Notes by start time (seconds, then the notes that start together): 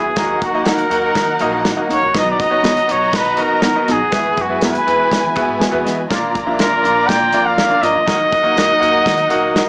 Already playing: F#3 B3 E4 F#4 G#4 G#5
0.04 E2
0.16 D#2 D#3 F#3 A#3 D#4 F#4 A#4 D#5 F#5, kick, snare, closed hi-hat
0.42 E2 F#4, kick, closed hi-hat
0.54 A#3 D#4 F#4 A#4 D#5
0.65 A#3 D#4 F#4 A#4, snare, closed hi-hat
0.78 closed hi-hat
0.90 D#2 A#3 D#4 F#4 A#4 F#5, closed hi-hat
1.15 D#3, kick, snare, closed hi-hat
1.39 A#1 A#3 D#4 F#4 A#4 D#5, closed hi-hat
1.65 A#3 D#4 F#4, snare, closed hi-hat
1.76 A#3 D#4 F#4 A#4 D#5
1.89 C#2 A#3 D#4 F#4 C#5, closed hi-hat
2.03 C2
2.14 B1 B2 B3 D#4 F#4 B4 D#5 A#5, kick, snare, closed hi-hat
2.18 D#5
2.32 D5
2.40 C#2 D#5, kick, closed hi-hat
2.50 B3 D#4 F#4 B4 C#5
2.63 B3 D#4 F#4, snare, closed hi-hat
2.77 closed hi-hat
2.87 B1 B3 D#4 F#4 B4 D#5, closed hi-hat
2.92 C#5
3.13 B2 B4, kick, snare, closed hi-hat
3.24 closed hi-hat
3.37 F#1 B3 D#4 F#4 B4 D#5, closed hi-hat
3.41 A#4
3.62 B3 D#4 F#4, snare, closed hi-hat
3.75 B3 D#4 F#4 B4 D#5
3.88 A#1 B3 D#4 F#4 G#4, snare, closed hi-hat
4.02 F2
4.11 E2 E3 G#3 B3 E4 F#4 G#4 B4 G#5, kick, snare, closed hi-hat
4.37 F#2, kick, closed hi-hat
4.41 F#4
4.49 B3 E4 F#4 G#4 B4
4.61 G#3 B3 F#4 B4, snare, closed hi-hat
4.75 closed hi-hat
4.86 E2 B3 E4 F#4 G#4 B4, closed hi-hat
5.11 kick, snare, closed hi-hat
5.24 E3
5.36 E2 B3 E4 F#4 G#4 B4, kick, closed hi-hat
5.48 G#2
5.60 G#3 B3 F#4 G#5, muted upright bass stroke, snare, closed hi-hat
5.71 E2 B3 E4 F#4 G#4 B4
5.85 E3 G#3 B3 F#4 D#5, snare, closed hi-hat
6.10 A#1 A#2 F3 A#3 D4 F4 A#4 D5 A#5, kick, snare, closed hi-hat
6.35 C2, kick, closed hi-hat
6.46 A#3 D4 F4 A#4 E5
6.59 D4 F4 A#4, snare, closed hi-hat
6.83 A#1 A#3 D4 F4 A#4 D5, closed hi-hat
7.08 A#2 G5, kick, snare, closed hi-hat
7.33 F2 A#3 D4 F4 A#4 D5, closed hi-hat
7.46 F5
7.57 D4 F4 A#4, snare, closed hi-hat
7.69 A#3 D4 F4 A#4 D5
7.83 G2 D4 F4 A#4 D#5, closed hi-hat
7.95 E2
8.06 D#2 D#3 F#3 A#3 D#4 F#4 A#4 D#5 F#5, kick, snare, closed hi-hat
8.32 E2, kick, closed hi-hat
8.43 A#3 D#4 F#4 A#4 D#5
8.56 D#2 D#4 F#4 A#4, snare, closed hi-hat
8.80 D#2 A#3 D#4 F#4 A#4 F#5, closed hi-hat
9.06 D#3, kick, snare, closed hi-hat
9.18 closed hi-hat
9.30 A#1 A#3 D#4 F#4 A#4 F#5, closed hi-hat
9.55 D#4 F#4 A#4, snare, closed hi-hat